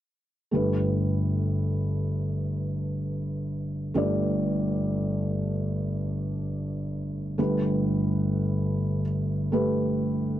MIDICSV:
0, 0, Header, 1, 2, 480
1, 0, Start_track
1, 0, Tempo, 500000
1, 9983, End_track
2, 0, Start_track
2, 0, Title_t, "Felt piano"
2, 0, Program_c, 0, 0
2, 493, Note_on_c, 0, 57, 39
2, 509, Note_on_c, 0, 31, 39
2, 509, Note_on_c, 0, 43, 38
2, 510, Note_on_c, 0, 67, 36
2, 525, Note_on_c, 0, 71, 47
2, 679, Control_c, 0, 64, 127
2, 3754, Note_off_c, 0, 57, 0
2, 3761, Note_off_c, 0, 31, 0
2, 3761, Note_off_c, 0, 43, 0
2, 3762, Note_off_c, 0, 67, 0
2, 3769, Note_off_c, 0, 71, 0
2, 3785, Note_on_c, 0, 57, 44
2, 3796, Note_on_c, 0, 31, 43
2, 3797, Note_on_c, 0, 67, 41
2, 3798, Note_on_c, 0, 43, 43
2, 3812, Note_on_c, 0, 74, 48
2, 7045, Note_off_c, 0, 57, 0
2, 7051, Note_off_c, 0, 31, 0
2, 7051, Note_off_c, 0, 43, 0
2, 7051, Note_off_c, 0, 67, 0
2, 7059, Note_off_c, 0, 74, 0
2, 7085, Note_on_c, 0, 57, 49
2, 7091, Note_on_c, 0, 31, 45
2, 7092, Note_on_c, 0, 43, 44
2, 7093, Note_on_c, 0, 67, 46
2, 7099, Note_on_c, 0, 71, 57
2, 7103, Control_c, 0, 64, 0
2, 7253, Control_c, 0, 64, 127
2, 8651, Note_off_c, 0, 57, 0
2, 8655, Note_off_c, 0, 67, 0
2, 8658, Note_off_c, 0, 71, 0
2, 9139, Note_on_c, 0, 57, 48
2, 9148, Note_on_c, 0, 67, 45
2, 9153, Note_on_c, 0, 71, 52
2, 9983, Note_off_c, 0, 31, 0
2, 9983, Note_off_c, 0, 43, 0
2, 9983, Note_off_c, 0, 57, 0
2, 9983, Note_off_c, 0, 67, 0
2, 9983, Note_off_c, 0, 71, 0
2, 9983, End_track
0, 0, End_of_file